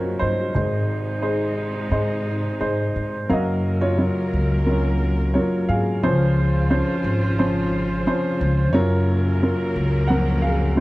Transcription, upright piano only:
0.00 0.51 A#2 medium
0.00 0.57 F#3 medium
0.00 0.57 C#4 medium
0.00 0.21 D#4 medium
0.00 0.18 F4 medium
0.00 0.57 A#4 medium
0.00 0.19 C5 medium
0.00 0.16 C#5 medium
0.19 0.54 D#4 medium
0.19 0.53 C5 medium
0.55 3.25 G#1 medium
0.55 3.25 G#2 medium
0.55 1.02 G#3 medium
0.55 1.02 D#4 medium
0.55 1.01 C5 medium
1.22 1.69 G#3 medium
1.22 1.69 D#4 medium
1.22 1.69 C5 medium
1.91 2.38 G#3 medium
1.91 2.39 D#4 medium
1.91 2.39 C5 medium
2.61 3.08 G#3 medium
2.61 3.08 D#4 medium
2.61 3.08 C5 medium
3.29 5.99 F#1 medium
3.29 5.99 F#2 medium
3.29 3.76 F#3 medium
3.29 3.79 F#4 medium
3.29 3.76 A#4 medium
3.29 3.84 D#5 medium
3.29 3.76 F5 medium
3.81 3.97 F4 medium
3.81 3.97 C#5 medium
3.98 4.45 F#3 medium
3.98 4.45 F4 medium
3.98 4.45 C#5 medium
4.67 5.13 F#3 medium
4.67 5.32 C#4 medium
4.67 5.13 F4 medium
4.67 5.13 A#4 medium
5.34 5.81 F#3 medium
5.34 5.81 F4 medium
5.34 5.81 A#4 medium
5.34 5.69 C#5 medium
5.69 7.69 G#4 medium
5.69 7.68 F5 medium
6.03 8.70 C#2 medium
6.03 8.70 C#3 medium
6.03 6.49 F3 medium
6.03 6.49 C#4 medium
6.03 6.49 C5 medium
6.70 7.17 F3 medium
6.70 7.17 C#4 medium
6.70 7.17 C5 medium
7.39 7.85 F3 medium
7.39 7.85 C#4 medium
7.39 7.85 C5 medium
8.07 8.53 F3 medium
8.07 8.53 C#4 medium
8.07 8.53 C5 medium
8.73 10.80 F#1 medium
8.73 10.80 F#2 medium
8.73 9.20 F#3 medium
8.73 9.42 F4 medium
8.73 9.20 A#4 loud
8.73 9.70 C#5 loud
9.43 9.88 F#3 medium
9.43 9.88 F4 medium
9.43 9.88 A#4 medium
10.08 10.56 F3 medium
10.08 10.56 F#3 medium
10.08 10.41 A#4 medium
10.08 10.43 F#5 medium
10.42 10.80 G#4 medium
10.42 10.80 F5 medium
10.77 10.80 F#3 medium
10.77 10.80 F4 medium
10.77 10.80 C5 medium

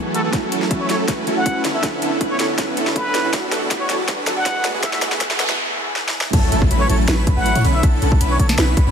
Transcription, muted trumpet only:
0.15 0.21 A4 medium
0.24 0.30 A4 medium
0.80 0.86 C#5 medium
0.90 0.96 C#5 medium
1.37 1.65 F#5 medium
1.74 1.85 E5 medium
2.31 2.36 C#5 medium
2.40 2.46 C#5 medium
2.96 3.33 B4 loud
3.81 3.86 C#5 medium
3.90 3.96 C#5 medium
4.37 4.65 F#5 medium
4.83 4.90 E5 medium
4.93 4.99 E5 medium
6.80 6.86 C#5 medium
6.89 6.96 C#5 medium
7.37 7.65 F#5 medium
7.74 7.85 E5 medium
8.31 8.36 C#5 medium
8.39 8.46 C#5 medium

